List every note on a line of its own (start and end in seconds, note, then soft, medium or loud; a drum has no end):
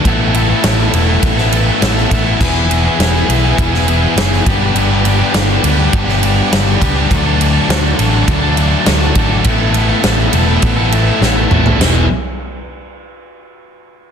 0.04 0.51 A1 medium
0.04 0.32 A3 medium
0.04 0.22 B3 loud
0.04 0.21 E4 loud
0.04 2.38 A4 medium
0.04 0.18 A4 loud
0.04 4.42 E5 medium
0.04 7.07 B5 medium
0.04 kick loud
0.04 ride medium
0.19 0.34 B3 medium
0.19 0.35 E4 medium
0.19 0.36 A4 medium
0.34 0.61 A3 medium
0.34 0.51 B3 medium
0.34 0.49 E4 medium
0.34 0.47 A4 medium
0.34 ride medium
0.48 0.63 B3 medium
0.48 0.64 E4 medium
0.48 0.65 A4 medium
0.62 0.87 A1 medium
0.62 0.91 A3 medium
0.62 0.94 B3 medium
0.62 0.94 E4 medium
0.62 0.95 A4 medium
0.62 snare loud
0.62 ride loud
0.93 1.16 E1 loud
0.93 1.51 A3 medium
0.93 1.40 B3 medium
0.93 1.37 E4 medium
0.93 1.36 A4 medium
0.93 ride medium
1.08 1.39 B3 medium
1.08 1.37 E4 medium
1.08 1.35 A4 medium
1.23 1.69 A1 medium
1.23 kick loud
1.23 ride loud
1.37 1.53 B3 medium
1.37 1.53 E4 medium
1.37 1.54 A4 medium
1.37 snare soft
1.52 1.80 A3 medium
1.52 1.70 B3 medium
1.52 1.67 E4 medium
1.52 1.66 A4 medium
1.52 ride medium
1.67 1.82 B3 medium
1.67 1.82 E4 medium
1.67 1.83 A4 medium
1.81 2.04 A1 medium
1.81 2.10 A3 medium
1.81 2.12 B3 loud
1.81 2.12 E4 medium
1.81 2.13 A4 loud
1.81 snare loud
1.81 ride loud
1.97 snare soft
2.11 2.34 A1 medium
2.11 2.38 A3 medium
2.11 2.28 B3 medium
2.11 2.26 E4 medium
2.11 2.24 A4 medium
2.11 kick medium
2.11 ride medium
2.25 2.40 B3 medium
2.25 2.39 E4 medium
2.25 2.38 A4 medium
2.40 2.87 E1 loud
2.40 2.67 E3 loud
2.40 2.57 B3 loud
2.40 2.54 E4 loud
2.40 4.44 G#4 medium
2.40 2.53 G#4 medium
2.40 kick loud
2.40 crash medium
2.54 2.69 B3 medium
2.54 2.69 E4 medium
2.54 2.71 G#4 medium
2.68 2.97 E3 medium
2.68 2.86 B3 medium
2.68 2.84 E4 medium
2.68 2.82 G#4 medium
2.68 ride medium
2.83 2.99 B3 medium
2.83 2.99 E4 medium
2.83 3.01 G#4 medium
2.99 3.22 E1 medium
2.99 3.26 E3 medium
2.99 3.28 B3 medium
2.99 3.28 E4 medium
2.99 3.29 G#4 medium
2.99 snare loud
2.99 ride loud
3.28 3.52 B1 medium
3.28 3.85 E3 medium
3.28 3.74 B3 medium
3.28 3.73 E4 medium
3.28 3.71 G#4 medium
3.28 ride medium
3.43 3.74 B3 medium
3.43 3.73 E4 medium
3.43 3.71 G#4 medium
3.58 4.04 E1 loud
3.58 kick loud
3.58 ride medium
3.72 3.87 B3 medium
3.72 3.88 E4 medium
3.72 3.89 G#4 medium
3.72 snare soft
3.87 4.15 E3 medium
3.87 4.04 B3 medium
3.87 4.02 E4 medium
3.87 4.00 G#4 medium
3.87 ride medium
4.02 4.16 B3 medium
4.02 4.17 E4 medium
4.02 4.18 G#4 medium
4.16 4.39 F#1 medium
4.16 4.44 E3 medium
4.16 4.45 B3 loud
4.16 4.45 E4 loud
4.16 4.46 G#4 loud
4.16 snare loud
4.16 ride loud
4.33 snare soft
4.45 4.69 G1 medium
4.45 4.74 G3 medium
4.45 4.63 B3 loud
4.45 4.62 D4 medium
4.45 7.08 G4 medium
4.45 9.41 D5 medium
4.45 kick loud
4.45 ride medium
4.49 4.60 G4 medium
4.61 4.75 B3 medium
4.61 4.77 D4 medium
4.61 4.77 G4 medium
4.75 5.21 G1 medium
4.75 5.04 G3 medium
4.75 4.92 B3 medium
4.75 4.91 D4 medium
4.75 4.89 G4 loud
4.75 ride loud
4.90 5.06 B3 medium
4.90 5.07 D4 medium
4.90 5.07 G4 medium
5.05 5.33 G3 medium
5.05 5.22 B3 medium
5.05 5.21 D4 medium
5.05 5.19 G4 medium
5.05 ride medium
5.20 5.34 B3 medium
5.20 5.36 D4 medium
5.20 5.36 G4 medium
5.34 5.57 G1 medium
5.34 5.62 G3 medium
5.34 5.63 B3 medium
5.34 5.65 D4 loud
5.34 5.65 G4 medium
5.34 snare loud
5.34 ride loud
5.63 5.87 D2 medium
5.63 6.21 G3 medium
5.63 6.09 B3 medium
5.63 6.08 D4 medium
5.63 6.06 G4 medium
5.63 ride medium
5.78 6.09 B3 medium
5.78 6.08 D4 medium
5.78 6.06 G4 medium
5.93 6.39 G1 loud
5.93 kick loud
5.93 ride loud
6.07 6.22 B3 medium
6.07 6.23 D4 medium
6.07 6.24 G4 medium
6.07 snare soft
6.22 6.50 G3 medium
6.22 6.39 B3 medium
6.22 6.37 D4 medium
6.22 6.35 G4 medium
6.22 ride medium
6.36 6.51 B3 medium
6.36 6.52 D4 medium
6.36 6.53 G4 medium
6.51 6.75 G1 medium
6.51 6.79 G3 medium
6.51 6.80 B3 medium
6.51 6.81 D4 medium
6.51 6.82 G4 medium
6.51 snare loud
6.51 ride loud
6.80 7.04 C#2 medium
6.80 7.08 G3 medium
6.80 6.98 B3 medium
6.80 6.97 D4 medium
6.80 6.94 G4 medium
6.80 kick medium
6.80 ride medium
6.96 7.10 B3 medium
6.96 7.10 D4 medium
6.96 7.09 G4 medium
7.10 7.57 D2 medium
7.10 7.55 D3 medium
7.10 7.38 F#3 loud
7.10 7.27 A3 medium
7.10 7.25 D4 loud
7.10 9.43 F#4 medium
7.10 7.24 A4 loud
7.10 9.43 A5 medium
7.10 kick loud
7.10 ride loud
7.25 7.40 A3 medium
7.25 7.40 D4 medium
7.25 7.42 A4 medium
7.39 7.68 F#3 medium
7.39 7.57 A3 medium
7.39 7.55 D4 medium
7.39 7.54 A4 medium
7.39 ride medium
7.54 7.69 A3 medium
7.54 7.69 D4 medium
7.54 7.71 A4 medium
7.68 7.92 D2 medium
7.68 8.28 D3 medium
7.68 7.97 F#3 medium
7.68 7.98 A3 medium
7.68 7.99 D4 loud
7.68 8.01 A4 loud
7.68 snare loud
7.68 ride medium
7.98 8.22 A1 medium
7.98 8.56 F#3 medium
7.98 8.44 A3 medium
7.98 8.43 D4 medium
7.98 8.41 A4 medium
7.98 ride medium
8.12 8.43 A3 medium
8.12 8.42 D4 medium
8.12 8.40 A4 medium
8.28 8.74 D2 loud
8.28 kick loud
8.28 ride loud
8.42 8.57 A3 medium
8.42 8.58 D4 medium
8.42 8.59 A4 medium
8.57 8.86 F#3 medium
8.57 8.73 A3 medium
8.57 8.71 D4 medium
8.57 8.70 A4 medium
8.57 ride medium
8.71 8.86 A3 medium
8.71 8.87 D4 medium
8.71 8.88 A4 medium
8.86 9.10 D2 medium
8.86 9.43 D3 loud
8.86 9.14 F#3 medium
8.86 9.15 A3 loud
8.86 9.16 D4 loud
8.86 9.17 A4 loud
8.86 snare loud
8.86 ride loud
9.15 9.39 G#1 medium
9.15 9.43 F#3 medium
9.15 9.32 A3 medium
9.15 9.30 D4 medium
9.15 9.28 A4 medium
9.15 kick medium
9.15 ride medium
9.30 9.43 A3 medium
9.30 9.44 D4 medium
9.30 9.43 A4 medium
9.44 9.92 A1 medium
9.44 9.72 A3 loud
9.44 9.60 B3 loud
9.44 9.59 E4 loud
9.44 11.78 A4 medium
9.44 9.57 A4 loud
9.44 11.78 E5 medium
9.44 11.79 B5 medium
9.44 kick loud
9.44 ride loud
9.58 9.73 B3 medium
9.58 9.74 E4 medium
9.58 9.76 A4 medium
9.73 10.01 A3 medium
9.73 9.90 B3 medium
9.73 9.88 E4 medium
9.73 9.86 A4 medium
9.73 ride medium
9.87 10.02 B3 medium
9.87 10.03 E4 medium
9.87 10.04 A4 medium
10.02 10.27 A1 medium
10.02 10.31 A3 medium
10.02 10.32 B3 loud
10.02 10.33 E4 medium
10.02 10.34 A4 loud
10.02 snare loud
10.02 ride medium
10.32 10.56 E1 medium
10.32 10.90 A3 medium
10.32 10.78 B3 medium
10.32 10.77 E4 medium
10.32 10.75 A4 medium
10.32 ride medium
10.47 10.78 B3 medium
10.47 10.77 E4 medium
10.47 10.76 A4 medium
10.62 11.09 A1 loud
10.62 kick loud
10.62 ride loud
10.76 10.91 B3 medium
10.76 10.92 E4 medium
10.76 10.93 A4 medium
10.92 11.19 A3 medium
10.92 11.08 B3 medium
10.92 11.06 E4 medium
10.92 11.05 A4 medium
10.92 ride medium
11.06 11.20 B3 medium
11.06 11.21 E4 medium
11.06 11.22 A4 medium
11.20 11.45 A1 medium
11.20 11.49 A3 medium
11.20 11.50 B3 loud
11.20 11.52 E4 medium
11.20 11.52 A4 loud
11.20 snare medium
11.50 11.74 A1 medium
11.50 11.79 A3 medium
11.50 11.67 B3 medium
11.50 11.66 E4 medium
11.50 11.64 A4 medium
11.50 mid tom medium
11.65 11.80 B3 medium
11.65 11.80 E4 medium
11.65 11.78 A4 medium
11.65 floor tom medium
11.80 12.08 E1 medium
11.80 12.04 E2 medium
11.80 12.05 B2 loud
11.80 12.05 E3 loud
11.80 12.08 B3 medium
11.80 12.08 G#4 medium
11.80 12.08 E5 medium
11.80 snare loud
11.80 crash medium